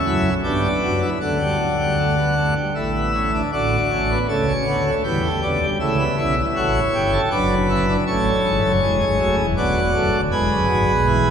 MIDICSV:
0, 0, Header, 1, 2, 480
1, 0, Start_track
1, 0, Key_signature, 2, "major"
1, 0, Tempo, 768246
1, 755, Time_signature, 3, 2, 24, 8
1, 3159, Tempo, 750939
1, 7153, End_track
2, 0, Start_track
2, 0, Title_t, "Pipe organ"
2, 0, Program_c, 0, 19
2, 0, Note_on_c, 0, 61, 74
2, 0, Note_on_c, 0, 76, 75
2, 36, Note_on_c, 0, 64, 77
2, 37, Note_on_c, 0, 54, 85
2, 38, Note_on_c, 0, 42, 87
2, 184, Note_off_c, 0, 64, 0
2, 185, Note_off_c, 0, 42, 0
2, 185, Note_off_c, 0, 54, 0
2, 211, Note_off_c, 0, 61, 0
2, 211, Note_off_c, 0, 76, 0
2, 272, Note_on_c, 0, 74, 73
2, 274, Note_on_c, 0, 55, 91
2, 274, Note_on_c, 0, 62, 72
2, 275, Note_on_c, 0, 43, 82
2, 275, Note_on_c, 0, 59, 80
2, 422, Note_off_c, 0, 55, 0
2, 423, Note_off_c, 0, 43, 0
2, 423, Note_off_c, 0, 62, 0
2, 517, Note_on_c, 0, 42, 70
2, 518, Note_on_c, 0, 54, 78
2, 519, Note_on_c, 0, 62, 59
2, 620, Note_off_c, 0, 62, 0
2, 636, Note_on_c, 0, 64, 63
2, 666, Note_off_c, 0, 42, 0
2, 666, Note_off_c, 0, 54, 0
2, 686, Note_off_c, 0, 74, 0
2, 688, Note_off_c, 0, 59, 0
2, 739, Note_off_c, 0, 64, 0
2, 755, Note_on_c, 0, 38, 71
2, 755, Note_on_c, 0, 62, 69
2, 755, Note_on_c, 0, 78, 70
2, 756, Note_on_c, 0, 50, 70
2, 757, Note_on_c, 0, 57, 68
2, 860, Note_off_c, 0, 57, 0
2, 877, Note_on_c, 0, 55, 59
2, 981, Note_off_c, 0, 55, 0
2, 996, Note_on_c, 0, 54, 61
2, 1101, Note_off_c, 0, 54, 0
2, 1118, Note_on_c, 0, 55, 63
2, 1223, Note_off_c, 0, 55, 0
2, 1243, Note_on_c, 0, 57, 70
2, 1346, Note_off_c, 0, 57, 0
2, 1362, Note_on_c, 0, 59, 60
2, 1465, Note_off_c, 0, 59, 0
2, 1481, Note_on_c, 0, 57, 58
2, 1585, Note_off_c, 0, 57, 0
2, 1587, Note_off_c, 0, 38, 0
2, 1587, Note_off_c, 0, 62, 0
2, 1587, Note_off_c, 0, 78, 0
2, 1588, Note_off_c, 0, 50, 0
2, 1601, Note_on_c, 0, 55, 52
2, 1705, Note_off_c, 0, 55, 0
2, 1720, Note_on_c, 0, 33, 62
2, 1720, Note_on_c, 0, 45, 67
2, 1721, Note_on_c, 0, 57, 63
2, 1721, Note_on_c, 0, 64, 70
2, 1721, Note_on_c, 0, 76, 66
2, 1825, Note_off_c, 0, 57, 0
2, 1844, Note_on_c, 0, 59, 57
2, 1948, Note_off_c, 0, 59, 0
2, 1963, Note_on_c, 0, 61, 55
2, 2068, Note_off_c, 0, 61, 0
2, 2087, Note_on_c, 0, 62, 61
2, 2136, Note_off_c, 0, 33, 0
2, 2136, Note_off_c, 0, 45, 0
2, 2136, Note_off_c, 0, 76, 0
2, 2137, Note_off_c, 0, 64, 0
2, 2189, Note_off_c, 0, 62, 0
2, 2202, Note_on_c, 0, 33, 69
2, 2202, Note_on_c, 0, 62, 73
2, 2202, Note_on_c, 0, 74, 70
2, 2203, Note_on_c, 0, 45, 63
2, 2204, Note_on_c, 0, 66, 69
2, 2351, Note_off_c, 0, 33, 0
2, 2351, Note_off_c, 0, 62, 0
2, 2352, Note_off_c, 0, 45, 0
2, 2442, Note_on_c, 0, 33, 81
2, 2444, Note_on_c, 0, 45, 82
2, 2444, Note_on_c, 0, 61, 67
2, 2547, Note_off_c, 0, 61, 0
2, 2565, Note_on_c, 0, 59, 68
2, 2590, Note_off_c, 0, 33, 0
2, 2592, Note_off_c, 0, 45, 0
2, 2614, Note_off_c, 0, 74, 0
2, 2615, Note_off_c, 0, 66, 0
2, 2666, Note_off_c, 0, 59, 0
2, 2679, Note_on_c, 0, 57, 73
2, 2679, Note_on_c, 0, 73, 70
2, 2680, Note_on_c, 0, 37, 95
2, 2680, Note_on_c, 0, 49, 89
2, 2680, Note_on_c, 0, 69, 74
2, 2783, Note_off_c, 0, 57, 0
2, 2798, Note_on_c, 0, 61, 65
2, 2828, Note_off_c, 0, 37, 0
2, 2828, Note_off_c, 0, 49, 0
2, 2828, Note_off_c, 0, 69, 0
2, 2902, Note_off_c, 0, 61, 0
2, 2916, Note_on_c, 0, 50, 88
2, 2917, Note_on_c, 0, 38, 83
2, 2917, Note_on_c, 0, 59, 74
2, 2917, Note_on_c, 0, 66, 69
2, 3021, Note_off_c, 0, 59, 0
2, 3034, Note_on_c, 0, 57, 67
2, 3065, Note_off_c, 0, 38, 0
2, 3065, Note_off_c, 0, 50, 0
2, 3065, Note_off_c, 0, 66, 0
2, 3089, Note_off_c, 0, 73, 0
2, 3138, Note_off_c, 0, 57, 0
2, 3148, Note_on_c, 0, 67, 77
2, 3150, Note_on_c, 0, 52, 93
2, 3150, Note_on_c, 0, 55, 76
2, 3150, Note_on_c, 0, 71, 75
2, 3152, Note_on_c, 0, 40, 91
2, 3257, Note_off_c, 0, 55, 0
2, 3274, Note_on_c, 0, 57, 70
2, 3302, Note_off_c, 0, 52, 0
2, 3302, Note_off_c, 0, 71, 0
2, 3303, Note_off_c, 0, 40, 0
2, 3380, Note_off_c, 0, 57, 0
2, 3393, Note_on_c, 0, 38, 78
2, 3393, Note_on_c, 0, 74, 72
2, 3394, Note_on_c, 0, 50, 80
2, 3394, Note_on_c, 0, 59, 68
2, 3500, Note_off_c, 0, 59, 0
2, 3515, Note_on_c, 0, 55, 72
2, 3545, Note_off_c, 0, 38, 0
2, 3545, Note_off_c, 0, 50, 0
2, 3545, Note_off_c, 0, 74, 0
2, 3569, Note_off_c, 0, 67, 0
2, 3621, Note_off_c, 0, 55, 0
2, 3634, Note_on_c, 0, 49, 97
2, 3635, Note_on_c, 0, 37, 95
2, 3635, Note_on_c, 0, 57, 75
2, 3635, Note_on_c, 0, 64, 79
2, 3635, Note_on_c, 0, 76, 81
2, 3742, Note_off_c, 0, 57, 0
2, 3757, Note_on_c, 0, 59, 71
2, 3786, Note_off_c, 0, 49, 0
2, 3787, Note_off_c, 0, 37, 0
2, 3787, Note_off_c, 0, 64, 0
2, 3863, Note_off_c, 0, 59, 0
2, 3878, Note_on_c, 0, 61, 72
2, 3878, Note_on_c, 0, 64, 68
2, 3879, Note_on_c, 0, 35, 88
2, 3879, Note_on_c, 0, 47, 88
2, 3984, Note_off_c, 0, 61, 0
2, 3988, Note_off_c, 0, 64, 0
2, 4001, Note_on_c, 0, 64, 77
2, 4030, Note_off_c, 0, 35, 0
2, 4030, Note_off_c, 0, 47, 0
2, 4053, Note_off_c, 0, 76, 0
2, 4121, Note_on_c, 0, 33, 92
2, 4121, Note_on_c, 0, 73, 70
2, 4122, Note_on_c, 0, 66, 77
2, 4123, Note_on_c, 0, 45, 88
2, 4270, Note_off_c, 0, 33, 0
2, 4271, Note_off_c, 0, 66, 0
2, 4272, Note_off_c, 0, 45, 0
2, 4364, Note_on_c, 0, 31, 83
2, 4366, Note_on_c, 0, 43, 88
2, 4366, Note_on_c, 0, 67, 76
2, 4468, Note_off_c, 0, 67, 0
2, 4483, Note_on_c, 0, 69, 73
2, 4513, Note_off_c, 0, 31, 0
2, 4514, Note_off_c, 0, 43, 0
2, 4518, Note_off_c, 0, 64, 0
2, 4535, Note_off_c, 0, 73, 0
2, 4586, Note_off_c, 0, 69, 0
2, 4599, Note_on_c, 0, 30, 101
2, 4599, Note_on_c, 0, 71, 88
2, 4599, Note_on_c, 0, 74, 81
2, 4600, Note_on_c, 0, 42, 97
2, 4600, Note_on_c, 0, 62, 85
2, 4750, Note_off_c, 0, 62, 0
2, 4750, Note_off_c, 0, 74, 0
2, 4846, Note_on_c, 0, 61, 71
2, 4847, Note_on_c, 0, 76, 71
2, 4949, Note_off_c, 0, 61, 0
2, 4964, Note_on_c, 0, 62, 73
2, 4995, Note_off_c, 0, 76, 0
2, 5015, Note_off_c, 0, 71, 0
2, 5016, Note_off_c, 0, 30, 0
2, 5016, Note_off_c, 0, 42, 0
2, 5068, Note_off_c, 0, 62, 0
2, 5085, Note_on_c, 0, 33, 88
2, 5085, Note_on_c, 0, 73, 80
2, 5086, Note_on_c, 0, 69, 88
2, 5087, Note_on_c, 0, 45, 83
2, 5087, Note_on_c, 0, 61, 70
2, 5234, Note_off_c, 0, 33, 0
2, 5236, Note_off_c, 0, 45, 0
2, 5236, Note_off_c, 0, 61, 0
2, 5325, Note_on_c, 0, 52, 88
2, 5327, Note_on_c, 0, 32, 77
2, 5327, Note_on_c, 0, 44, 76
2, 5429, Note_off_c, 0, 32, 0
2, 5429, Note_off_c, 0, 44, 0
2, 5441, Note_on_c, 0, 42, 74
2, 5443, Note_on_c, 0, 30, 69
2, 5473, Note_off_c, 0, 52, 0
2, 5499, Note_off_c, 0, 69, 0
2, 5546, Note_off_c, 0, 42, 0
2, 5547, Note_off_c, 0, 30, 0
2, 5559, Note_on_c, 0, 56, 103
2, 5561, Note_on_c, 0, 68, 85
2, 5562, Note_on_c, 0, 28, 83
2, 5562, Note_on_c, 0, 40, 82
2, 5666, Note_off_c, 0, 28, 0
2, 5666, Note_off_c, 0, 40, 0
2, 5690, Note_on_c, 0, 32, 80
2, 5690, Note_on_c, 0, 44, 80
2, 5709, Note_off_c, 0, 56, 0
2, 5790, Note_off_c, 0, 32, 0
2, 5790, Note_off_c, 0, 44, 0
2, 5802, Note_on_c, 0, 30, 74
2, 5802, Note_on_c, 0, 42, 84
2, 5803, Note_on_c, 0, 57, 94
2, 5905, Note_off_c, 0, 30, 0
2, 5905, Note_off_c, 0, 42, 0
2, 5907, Note_off_c, 0, 73, 0
2, 5920, Note_on_c, 0, 40, 67
2, 5923, Note_on_c, 0, 28, 77
2, 5950, Note_off_c, 0, 57, 0
2, 5972, Note_off_c, 0, 68, 0
2, 6023, Note_off_c, 0, 40, 0
2, 6025, Note_off_c, 0, 28, 0
2, 6044, Note_on_c, 0, 59, 110
2, 6045, Note_on_c, 0, 66, 83
2, 6045, Note_on_c, 0, 74, 83
2, 6046, Note_on_c, 0, 26, 80
2, 6047, Note_on_c, 0, 38, 89
2, 6146, Note_off_c, 0, 26, 0
2, 6147, Note_off_c, 0, 38, 0
2, 6162, Note_on_c, 0, 40, 80
2, 6163, Note_on_c, 0, 28, 78
2, 6190, Note_off_c, 0, 59, 0
2, 6264, Note_off_c, 0, 28, 0
2, 6264, Note_off_c, 0, 40, 0
2, 6282, Note_on_c, 0, 42, 78
2, 6284, Note_on_c, 0, 57, 101
2, 6285, Note_on_c, 0, 30, 78
2, 6383, Note_off_c, 0, 42, 0
2, 6385, Note_off_c, 0, 30, 0
2, 6403, Note_on_c, 0, 26, 76
2, 6405, Note_on_c, 0, 38, 80
2, 6430, Note_off_c, 0, 57, 0
2, 6453, Note_off_c, 0, 66, 0
2, 6453, Note_off_c, 0, 74, 0
2, 6504, Note_off_c, 0, 26, 0
2, 6505, Note_off_c, 0, 38, 0
2, 6520, Note_on_c, 0, 56, 99
2, 6522, Note_on_c, 0, 28, 83
2, 6522, Note_on_c, 0, 40, 85
2, 6522, Note_on_c, 0, 68, 90
2, 6522, Note_on_c, 0, 71, 91
2, 6623, Note_off_c, 0, 28, 0
2, 6623, Note_off_c, 0, 40, 0
2, 6639, Note_on_c, 0, 42, 85
2, 6640, Note_on_c, 0, 30, 83
2, 6668, Note_off_c, 0, 56, 0
2, 6741, Note_off_c, 0, 42, 0
2, 6742, Note_off_c, 0, 30, 0
2, 6757, Note_on_c, 0, 44, 85
2, 6758, Note_on_c, 0, 32, 78
2, 6758, Note_on_c, 0, 54, 94
2, 6860, Note_off_c, 0, 44, 0
2, 6861, Note_off_c, 0, 32, 0
2, 6878, Note_on_c, 0, 35, 90
2, 6878, Note_on_c, 0, 47, 85
2, 6906, Note_off_c, 0, 54, 0
2, 7002, Note_on_c, 0, 52, 105
2, 7148, Note_off_c, 0, 52, 0
2, 7153, Note_off_c, 0, 35, 0
2, 7153, Note_off_c, 0, 47, 0
2, 7153, Note_off_c, 0, 68, 0
2, 7153, Note_off_c, 0, 71, 0
2, 7153, End_track
0, 0, End_of_file